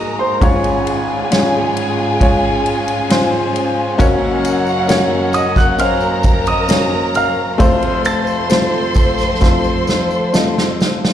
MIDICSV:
0, 0, Header, 1, 6, 480
1, 0, Start_track
1, 0, Tempo, 898204
1, 221, Time_signature, 4, 2, 24, 8
1, 4060, Tempo, 914634
1, 5914, End_track
2, 0, Start_track
2, 0, Title_t, "Grand piano"
2, 0, Program_c, 0, 0
2, 0, Note_on_c, 0, 75, 72
2, 0, Note_on_c, 0, 87, 105
2, 84, Note_off_c, 0, 75, 0
2, 103, Note_on_c, 0, 84, 82
2, 110, Note_on_c, 0, 72, 67
2, 113, Note_off_c, 0, 87, 0
2, 214, Note_off_c, 0, 84, 0
2, 218, Note_off_c, 0, 72, 0
2, 223, Note_on_c, 0, 85, 76
2, 228, Note_on_c, 0, 73, 56
2, 1159, Note_off_c, 0, 85, 0
2, 1162, Note_off_c, 0, 73, 0
2, 2855, Note_on_c, 0, 87, 99
2, 2864, Note_on_c, 0, 75, 72
2, 2971, Note_off_c, 0, 75, 0
2, 2978, Note_on_c, 0, 90, 99
2, 2979, Note_off_c, 0, 87, 0
2, 2986, Note_on_c, 0, 78, 72
2, 3093, Note_off_c, 0, 78, 0
2, 3098, Note_on_c, 0, 89, 92
2, 3100, Note_off_c, 0, 90, 0
2, 3106, Note_on_c, 0, 77, 73
2, 3441, Note_off_c, 0, 77, 0
2, 3461, Note_on_c, 0, 87, 93
2, 3469, Note_off_c, 0, 89, 0
2, 3471, Note_on_c, 0, 75, 63
2, 3805, Note_off_c, 0, 75, 0
2, 3826, Note_on_c, 0, 89, 94
2, 3832, Note_off_c, 0, 87, 0
2, 3833, Note_on_c, 0, 77, 78
2, 4279, Note_off_c, 0, 89, 0
2, 4283, Note_off_c, 0, 77, 0
2, 4303, Note_on_c, 0, 93, 116
2, 4308, Note_on_c, 0, 81, 75
2, 5722, Note_off_c, 0, 93, 0
2, 5725, Note_off_c, 0, 81, 0
2, 5914, End_track
3, 0, Start_track
3, 0, Title_t, "Violin section"
3, 0, Program_c, 1, 48
3, 0, Note_on_c, 1, 70, 93
3, 0, Note_on_c, 1, 82, 88
3, 204, Note_off_c, 1, 70, 0
3, 204, Note_off_c, 1, 82, 0
3, 222, Note_on_c, 1, 80, 102
3, 224, Note_on_c, 1, 68, 91
3, 2115, Note_off_c, 1, 80, 0
3, 2117, Note_off_c, 1, 68, 0
3, 2134, Note_on_c, 1, 66, 88
3, 2135, Note_on_c, 1, 78, 112
3, 3075, Note_off_c, 1, 66, 0
3, 3075, Note_off_c, 1, 78, 0
3, 3098, Note_on_c, 1, 70, 102
3, 3098, Note_on_c, 1, 82, 108
3, 4043, Note_off_c, 1, 70, 0
3, 4043, Note_off_c, 1, 82, 0
3, 4062, Note_on_c, 1, 84, 94
3, 4063, Note_on_c, 1, 72, 91
3, 5914, Note_off_c, 1, 72, 0
3, 5914, Note_off_c, 1, 84, 0
3, 5914, End_track
4, 0, Start_track
4, 0, Title_t, "Felt piano"
4, 0, Program_c, 2, 0
4, 0, Control_c, 2, 64, 127
4, 0, Note_on_c, 2, 32, 81
4, 0, Note_on_c, 2, 44, 75
4, 0, Note_on_c, 2, 56, 70
4, 0, Note_on_c, 2, 58, 68
4, 0, Note_on_c, 2, 63, 62
4, 0, Note_on_c, 2, 66, 76
4, 0, Note_on_c, 2, 70, 77
4, 194, Note_off_c, 2, 56, 0
4, 195, Note_off_c, 2, 58, 0
4, 197, Note_off_c, 2, 63, 0
4, 199, Note_off_c, 2, 66, 0
4, 200, Note_off_c, 2, 32, 0
4, 200, Note_off_c, 2, 44, 0
4, 219, Note_on_c, 2, 56, 96
4, 221, Note_on_c, 2, 61, 88
4, 224, Note_on_c, 2, 32, 74
4, 224, Note_on_c, 2, 44, 72
4, 226, Note_on_c, 2, 65, 91
4, 229, Control_c, 2, 64, 0
4, 229, Note_on_c, 2, 73, 117
4, 234, Note_off_c, 2, 70, 0
4, 307, Control_c, 2, 64, 127
4, 676, Note_off_c, 2, 56, 0
4, 678, Note_off_c, 2, 61, 0
4, 680, Note_off_c, 2, 65, 0
4, 682, Note_off_c, 2, 73, 0
4, 698, Note_on_c, 2, 56, 80
4, 702, Note_on_c, 2, 61, 75
4, 703, Note_on_c, 2, 65, 76
4, 705, Note_on_c, 2, 73, 97
4, 1154, Note_off_c, 2, 56, 0
4, 1156, Note_off_c, 2, 61, 0
4, 1157, Note_off_c, 2, 65, 0
4, 1158, Note_off_c, 2, 73, 0
4, 1176, Note_on_c, 2, 56, 86
4, 1180, Note_on_c, 2, 61, 73
4, 1184, Note_on_c, 2, 65, 80
4, 1186, Note_on_c, 2, 73, 100
4, 1632, Note_off_c, 2, 56, 0
4, 1634, Note_off_c, 2, 61, 0
4, 1636, Note_off_c, 2, 65, 0
4, 1637, Note_off_c, 2, 73, 0
4, 1653, Note_on_c, 2, 56, 84
4, 1657, Note_on_c, 2, 61, 81
4, 1661, Note_on_c, 2, 65, 78
4, 1664, Note_on_c, 2, 72, 99
4, 2110, Note_off_c, 2, 56, 0
4, 2112, Note_off_c, 2, 61, 0
4, 2114, Note_off_c, 2, 65, 0
4, 2115, Note_off_c, 2, 72, 0
4, 2116, Note_off_c, 2, 44, 0
4, 2117, Note_off_c, 2, 32, 0
4, 2128, Note_on_c, 2, 58, 126
4, 2130, Note_on_c, 2, 61, 127
4, 2132, Note_on_c, 2, 30, 83
4, 2132, Note_on_c, 2, 42, 88
4, 2133, Note_on_c, 2, 66, 126
4, 2137, Note_on_c, 2, 73, 127
4, 2143, Control_c, 2, 64, 0
4, 2243, Control_c, 2, 64, 127
4, 2586, Note_off_c, 2, 58, 0
4, 2587, Note_off_c, 2, 61, 0
4, 2589, Note_off_c, 2, 66, 0
4, 2591, Note_off_c, 2, 73, 0
4, 2606, Note_on_c, 2, 58, 93
4, 2610, Note_on_c, 2, 61, 88
4, 2613, Note_on_c, 2, 66, 88
4, 2616, Note_on_c, 2, 73, 121
4, 3067, Note_off_c, 2, 58, 0
4, 3069, Note_off_c, 2, 61, 0
4, 3070, Note_off_c, 2, 66, 0
4, 3072, Note_off_c, 2, 73, 0
4, 3086, Note_on_c, 2, 58, 67
4, 3089, Note_on_c, 2, 61, 65
4, 3092, Note_on_c, 2, 66, 66
4, 3097, Note_on_c, 2, 72, 81
4, 3549, Note_off_c, 2, 58, 0
4, 3551, Note_off_c, 2, 61, 0
4, 3552, Note_off_c, 2, 66, 0
4, 3555, Note_off_c, 2, 72, 0
4, 3570, Note_on_c, 2, 58, 76
4, 3571, Note_on_c, 2, 61, 65
4, 3574, Note_on_c, 2, 66, 69
4, 3579, Note_on_c, 2, 73, 82
4, 4033, Note_off_c, 2, 58, 0
4, 4033, Note_off_c, 2, 61, 0
4, 4035, Note_off_c, 2, 66, 0
4, 4037, Note_off_c, 2, 30, 0
4, 4037, Note_off_c, 2, 42, 0
4, 4037, Note_off_c, 2, 73, 0
4, 4051, Note_on_c, 2, 57, 114
4, 4055, Note_on_c, 2, 29, 74
4, 4055, Note_on_c, 2, 60, 86
4, 4057, Note_on_c, 2, 41, 69
4, 4057, Note_on_c, 2, 65, 90
4, 4061, Note_on_c, 2, 72, 127
4, 4067, Control_c, 2, 64, 0
4, 4171, Control_c, 2, 64, 127
4, 4506, Note_off_c, 2, 57, 0
4, 4508, Note_off_c, 2, 60, 0
4, 4509, Note_off_c, 2, 65, 0
4, 4511, Note_off_c, 2, 72, 0
4, 4531, Note_on_c, 2, 57, 80
4, 4533, Note_on_c, 2, 60, 76
4, 4535, Note_on_c, 2, 65, 72
4, 4538, Note_on_c, 2, 72, 92
4, 4988, Note_off_c, 2, 57, 0
4, 4989, Note_off_c, 2, 60, 0
4, 4990, Note_off_c, 2, 65, 0
4, 4992, Note_off_c, 2, 72, 0
4, 5010, Note_on_c, 2, 57, 82
4, 5012, Note_on_c, 2, 60, 66
4, 5015, Note_on_c, 2, 65, 73
4, 5017, Note_on_c, 2, 72, 91
4, 5472, Note_off_c, 2, 57, 0
4, 5473, Note_off_c, 2, 60, 0
4, 5474, Note_off_c, 2, 65, 0
4, 5475, Note_off_c, 2, 72, 0
4, 5494, Note_on_c, 2, 72, 78
4, 5497, Note_on_c, 2, 57, 77
4, 5499, Note_on_c, 2, 60, 72
4, 5502, Note_on_c, 2, 65, 67
4, 5505, Note_on_c, 2, 75, 84
4, 5914, Note_off_c, 2, 29, 0
4, 5914, Note_off_c, 2, 41, 0
4, 5914, Note_off_c, 2, 57, 0
4, 5914, Note_off_c, 2, 60, 0
4, 5914, Note_off_c, 2, 65, 0
4, 5914, Note_off_c, 2, 72, 0
4, 5914, Note_off_c, 2, 75, 0
4, 5914, End_track
5, 0, Start_track
5, 0, Title_t, "String section"
5, 0, Program_c, 3, 48
5, 0, Note_on_c, 3, 44, 73
5, 0, Note_on_c, 3, 56, 59
5, 0, Note_on_c, 3, 63, 64
5, 0, Note_on_c, 3, 70, 82
5, 201, Note_off_c, 3, 63, 0
5, 202, Note_off_c, 3, 70, 0
5, 203, Note_off_c, 3, 44, 0
5, 216, Note_on_c, 3, 61, 70
5, 217, Note_on_c, 3, 44, 70
5, 218, Note_on_c, 3, 65, 85
5, 2115, Note_off_c, 3, 44, 0
5, 2115, Note_off_c, 3, 56, 0
5, 2115, Note_off_c, 3, 65, 0
5, 2137, Note_on_c, 3, 42, 82
5, 2138, Note_on_c, 3, 54, 75
5, 2138, Note_on_c, 3, 70, 89
5, 4036, Note_off_c, 3, 61, 0
5, 4042, Note_off_c, 3, 42, 0
5, 4042, Note_off_c, 3, 54, 0
5, 4042, Note_off_c, 3, 70, 0
5, 4060, Note_on_c, 3, 41, 82
5, 4061, Note_on_c, 3, 53, 75
5, 4062, Note_on_c, 3, 60, 66
5, 4062, Note_on_c, 3, 69, 82
5, 5914, Note_off_c, 3, 41, 0
5, 5914, Note_off_c, 3, 53, 0
5, 5914, Note_off_c, 3, 60, 0
5, 5914, Note_off_c, 3, 69, 0
5, 5914, End_track
6, 0, Start_track
6, 0, Title_t, "Drums"
6, 222, Note_on_c, 9, 36, 106
6, 223, Note_on_c, 9, 51, 77
6, 275, Note_off_c, 9, 36, 0
6, 277, Note_off_c, 9, 51, 0
6, 342, Note_on_c, 9, 51, 46
6, 396, Note_off_c, 9, 51, 0
6, 464, Note_on_c, 9, 51, 63
6, 517, Note_off_c, 9, 51, 0
6, 703, Note_on_c, 9, 51, 76
6, 711, Note_on_c, 9, 38, 126
6, 757, Note_off_c, 9, 51, 0
6, 764, Note_off_c, 9, 38, 0
6, 944, Note_on_c, 9, 51, 64
6, 997, Note_off_c, 9, 51, 0
6, 1181, Note_on_c, 9, 36, 106
6, 1181, Note_on_c, 9, 51, 70
6, 1235, Note_off_c, 9, 36, 0
6, 1235, Note_off_c, 9, 51, 0
6, 1420, Note_on_c, 9, 51, 56
6, 1474, Note_off_c, 9, 51, 0
6, 1538, Note_on_c, 9, 51, 48
6, 1591, Note_off_c, 9, 51, 0
6, 1658, Note_on_c, 9, 51, 87
6, 1664, Note_on_c, 9, 38, 127
6, 1712, Note_off_c, 9, 51, 0
6, 1718, Note_off_c, 9, 38, 0
6, 1900, Note_on_c, 9, 51, 56
6, 1954, Note_off_c, 9, 51, 0
6, 2137, Note_on_c, 9, 36, 102
6, 2137, Note_on_c, 9, 51, 72
6, 2140, Note_on_c, 9, 54, 66
6, 2190, Note_off_c, 9, 36, 0
6, 2190, Note_off_c, 9, 51, 0
6, 2193, Note_off_c, 9, 54, 0
6, 2376, Note_on_c, 9, 51, 67
6, 2376, Note_on_c, 9, 54, 61
6, 2429, Note_off_c, 9, 51, 0
6, 2430, Note_off_c, 9, 54, 0
6, 2493, Note_on_c, 9, 54, 33
6, 2547, Note_off_c, 9, 54, 0
6, 2613, Note_on_c, 9, 51, 66
6, 2613, Note_on_c, 9, 54, 78
6, 2620, Note_on_c, 9, 38, 127
6, 2666, Note_off_c, 9, 51, 0
6, 2666, Note_off_c, 9, 54, 0
6, 2674, Note_off_c, 9, 38, 0
6, 2849, Note_on_c, 9, 54, 58
6, 2855, Note_on_c, 9, 51, 55
6, 2902, Note_off_c, 9, 54, 0
6, 2908, Note_off_c, 9, 51, 0
6, 2972, Note_on_c, 9, 36, 85
6, 2976, Note_on_c, 9, 54, 39
6, 2980, Note_on_c, 9, 38, 35
6, 3026, Note_off_c, 9, 36, 0
6, 3029, Note_off_c, 9, 54, 0
6, 3034, Note_off_c, 9, 38, 0
6, 3092, Note_on_c, 9, 54, 54
6, 3096, Note_on_c, 9, 51, 73
6, 3145, Note_off_c, 9, 54, 0
6, 3149, Note_off_c, 9, 51, 0
6, 3209, Note_on_c, 9, 54, 31
6, 3263, Note_off_c, 9, 54, 0
6, 3330, Note_on_c, 9, 54, 53
6, 3336, Note_on_c, 9, 36, 94
6, 3336, Note_on_c, 9, 51, 55
6, 3384, Note_off_c, 9, 54, 0
6, 3389, Note_off_c, 9, 51, 0
6, 3390, Note_off_c, 9, 36, 0
6, 3452, Note_on_c, 9, 54, 35
6, 3456, Note_on_c, 9, 51, 47
6, 3505, Note_off_c, 9, 54, 0
6, 3510, Note_off_c, 9, 51, 0
6, 3573, Note_on_c, 9, 54, 103
6, 3579, Note_on_c, 9, 51, 85
6, 3585, Note_on_c, 9, 38, 127
6, 3626, Note_off_c, 9, 54, 0
6, 3632, Note_off_c, 9, 51, 0
6, 3638, Note_off_c, 9, 38, 0
6, 3817, Note_on_c, 9, 54, 43
6, 3821, Note_on_c, 9, 51, 57
6, 3870, Note_off_c, 9, 54, 0
6, 3875, Note_off_c, 9, 51, 0
6, 4060, Note_on_c, 9, 54, 63
6, 4061, Note_on_c, 9, 36, 98
6, 4061, Note_on_c, 9, 51, 69
6, 4113, Note_off_c, 9, 51, 0
6, 4113, Note_off_c, 9, 54, 0
6, 4114, Note_off_c, 9, 36, 0
6, 4179, Note_on_c, 9, 51, 42
6, 4232, Note_off_c, 9, 51, 0
6, 4295, Note_on_c, 9, 54, 68
6, 4299, Note_on_c, 9, 51, 61
6, 4348, Note_off_c, 9, 54, 0
6, 4351, Note_off_c, 9, 51, 0
6, 4412, Note_on_c, 9, 54, 32
6, 4464, Note_off_c, 9, 54, 0
6, 4532, Note_on_c, 9, 54, 82
6, 4536, Note_on_c, 9, 51, 74
6, 4544, Note_on_c, 9, 38, 127
6, 4585, Note_off_c, 9, 54, 0
6, 4589, Note_off_c, 9, 51, 0
6, 4596, Note_off_c, 9, 38, 0
6, 4767, Note_on_c, 9, 54, 56
6, 4774, Note_on_c, 9, 36, 89
6, 4775, Note_on_c, 9, 51, 66
6, 4819, Note_off_c, 9, 54, 0
6, 4826, Note_off_c, 9, 36, 0
6, 4828, Note_off_c, 9, 51, 0
6, 4893, Note_on_c, 9, 54, 40
6, 4901, Note_on_c, 9, 38, 32
6, 4945, Note_off_c, 9, 54, 0
6, 4954, Note_off_c, 9, 38, 0
6, 5012, Note_on_c, 9, 54, 52
6, 5016, Note_on_c, 9, 36, 89
6, 5022, Note_on_c, 9, 38, 59
6, 5064, Note_off_c, 9, 54, 0
6, 5069, Note_off_c, 9, 36, 0
6, 5075, Note_off_c, 9, 38, 0
6, 5132, Note_on_c, 9, 54, 28
6, 5184, Note_off_c, 9, 54, 0
6, 5254, Note_on_c, 9, 54, 54
6, 5264, Note_on_c, 9, 38, 73
6, 5307, Note_off_c, 9, 54, 0
6, 5316, Note_off_c, 9, 38, 0
6, 5377, Note_on_c, 9, 54, 32
6, 5429, Note_off_c, 9, 54, 0
6, 5499, Note_on_c, 9, 54, 105
6, 5505, Note_on_c, 9, 38, 106
6, 5551, Note_off_c, 9, 54, 0
6, 5558, Note_off_c, 9, 38, 0
6, 5626, Note_on_c, 9, 38, 82
6, 5679, Note_off_c, 9, 38, 0
6, 5744, Note_on_c, 9, 54, 50
6, 5749, Note_on_c, 9, 38, 102
6, 5796, Note_off_c, 9, 54, 0
6, 5801, Note_off_c, 9, 38, 0
6, 5870, Note_on_c, 9, 38, 109
6, 5914, Note_off_c, 9, 38, 0
6, 5914, End_track
0, 0, End_of_file